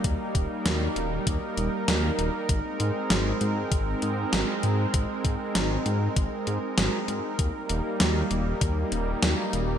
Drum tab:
HH |xxxxxxxx|xxxxxxxx|xxxxxxxx|xxxxxxxx|
SD |--o---o-|--o---o-|--o---o-|--o---o-|
BD |oo--o---|o---o---|oo--o---|o---o---|